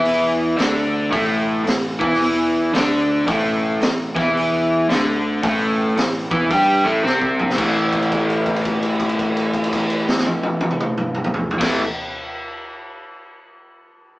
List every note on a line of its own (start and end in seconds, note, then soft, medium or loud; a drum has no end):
0.00 0.55 E2 medium
0.00 0.57 E3 medium
0.00 0.57 E4 loud
0.05 open hi-hat medium
0.57 1.09 D2 medium
0.57 1.10 D3 medium
0.57 1.11 D4 loud
0.57 snare loud
0.57 open hi-hat soft
1.11 1.63 A1 medium
1.11 1.63 A2 loud
1.11 1.66 A3 loud
1.11 kick loud
1.11 open hi-hat medium
1.65 1.99 A1 medium
1.65 1.93 A2 medium
1.65 snare loud
1.65 open hi-hat medium
1.99 2.71 E2 loud
1.99 2.73 E3 medium
1.99 2.73 E4 medium
1.99 kick loud
2.13 snare soft
2.21 open hi-hat medium
2.73 3.24 D2 loud
2.73 3.26 D3 medium
2.73 3.27 D4 loud
2.73 snare loud
2.73 open hi-hat medium
3.27 3.78 A1 medium
3.27 3.80 A2 medium
3.27 3.81 A3 loud
3.27 kick loud
3.27 open hi-hat medium
3.81 4.14 A1 medium
3.81 4.10 A2 medium
3.81 snare loud
3.81 open hi-hat soft
4.15 4.86 E2 loud
4.15 4.89 E3 medium
4.15 4.89 E4 loud
4.15 kick loud
4.15 snare soft
4.37 open hi-hat medium
4.89 5.40 D2 loud
4.89 5.42 D3 medium
4.89 5.43 D4 medium
4.89 snare loud
4.89 open hi-hat soft
5.43 5.93 A1 medium
5.43 5.96 A2 loud
5.43 5.97 A3 loud
5.43 kick loud
5.43 open hi-hat medium
5.97 6.29 A1 medium
5.97 6.25 A2 medium
5.97 snare loud
5.97 open hi-hat medium
6.31 6.49 E2 medium
6.31 6.50 E3 medium
6.31 6.50 E4 medium
6.31 kick loud
6.50 6.83 G2 medium
6.50 6.84 G3 medium
6.50 6.84 G4 loud
6.50 kick loud
6.50 open hi-hat medium
6.84 7.03 A1 loud
6.84 7.03 A2 loud
6.84 7.04 A3 medium
7.03 7.54 C2 medium
7.03 7.56 C3 medium
7.03 7.57 C4 medium
7.03 snare medium
7.21 kick medium
7.39 mid tom medium
7.50 snare medium
7.56 11.48 A1 medium
7.56 11.51 A2 medium
7.56 11.52 E3 medium
7.56 kick loud
7.56 crash medium
7.60 11.53 A3 loud
7.92 kick medium
7.92 crash soft
8.02 crash soft
8.12 kick medium
8.12 crash soft
8.30 crash soft
8.46 kick medium
8.46 crash soft
8.56 crash soft
8.65 kick medium
8.65 crash medium
8.83 crash soft
9.00 kick medium
9.00 crash soft
9.09 crash soft
9.19 kick medium
9.19 crash soft
9.37 crash soft
9.54 kick medium
9.54 crash soft
9.64 crash medium
9.73 kick medium
9.73 crash medium
9.90 crash soft
10.09 snare medium
10.18 snare medium
10.26 high tom medium
10.43 high tom medium
10.61 high tom medium
10.71 mid tom medium
10.80 mid tom loud
10.98 mid tom medium
11.15 mid tom medium
11.24 mid tom loud
11.34 floor tom loud
11.51 floor tom loud
11.58 11.80 A1 medium
11.58 11.80 A2 medium
11.58 11.81 E3 medium
11.58 11.82 A3 loud
11.58 kick loud
11.58 snare loud
11.58 crash loud